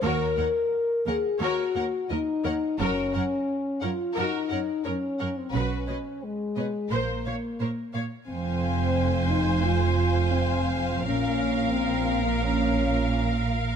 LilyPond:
<<
  \new Staff \with { instrumentName = "Violin section" } { \time 4/4 \key bes \minor \tempo 4 = 87 des''8 ges''8 r8 ges''8 des''8 ges''8 ees''8 ges''8 | bes'8 ges''8 r8 ges''8 bes'8 ges''8 des''8 ges''8 | b'8 dis''8 r8 dis''8 c''8 f''8 des''8 f''8 | aes''1 |
f''1 | }
  \new Staff \with { instrumentName = "Violin section" } { \time 4/4 \key bes \minor ges'8 des''8 r8 des''8 ges'8 des''8 bes'8 des''8 | ges'8 des''8 r8 des''8 ges'8 des''8 bes'8 des''8 | fis'8 cis''8 r8 cis''8 bes'8 des''8 c''8 des''8 | f''1~ |
f''1 | }
  \new Staff \with { instrumentName = "Viola section" } { \time 4/4 \key bes \minor bes'8 bes'8 r8 bes'8 bes'8 bes'8 bes'8 bes'8 | bes'8 bes'8 r8 bes'8 bes'8 bes'8 bes'8 bes'8 | b'8 b'8 r8 b'8 c''8 des''8 bes'8 des''8 | c''1 |
bes'1 | }
  \new Staff \with { instrumentName = "French horn section" } { \time 4/4 \key bes \minor bes'4. aes'8 ges'4 ees'4 | des'4. f'8 ees'4 des'8. c'16 | cis'4 aes4 bes4. r8 | c'4. ees'8 f'4 c'4 |
des'4 c'8. bes16 des'4. r8 | }
  \new Staff \with { instrumentName = "Cello section" } { \clef bass \time 4/4 \key bes \minor ees,8 ees,8 r8 ees,8 ees,8 ees,8 ees,8 ees,8 | ges,8 ges,8 r8 ges,8 ges,8 ges,8 ges,8 ges,8 | b,8 b,8 r8 b,8 bes,8 bes,8 bes,8 bes,8 | f,1 |
bes,1 | }
  \new Staff \with { instrumentName = "Double bass section" } { \clef bass \time 4/4 \key bes \minor ees,8 r2. r8 | ges,,8 r2. r8 | b,,8 r4. bes,,8 r4. | f,,1 |
bes,,1 | }
>>